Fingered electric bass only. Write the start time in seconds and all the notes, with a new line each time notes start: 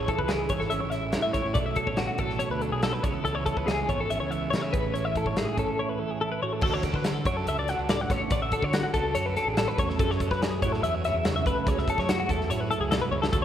Already playing: A1
0.19 C#2
0.49 G#1
0.83 A1
1.15 A2
1.45 A2
1.55 B1
1.87 A1
2.19 A1
2.50 D2
2.72 B1
3.04 C#2
3.24 C#2
3.56 C#2
3.89 G#1
4.20 C#2
4.53 C#3
4.74 A1
5.25 G#1
5.57 G#1
6.62 D2
6.94 D3
7.25 F#2
7.47 C#2
7.79 C#2
8.10 A1
8.31 A1
8.62 D3
8.94 C#2
9.16 F#2
9.47 A1
9.78 E2
9.99 F#2
10.31 F#3
10.62 A2
10.83 E2
11.14 E2
11.46 C#2
11.67 C#2
11.97 F#3
12.29 E2
12.50 A2
12.80 C#2
13.11 C#2
13.33 D2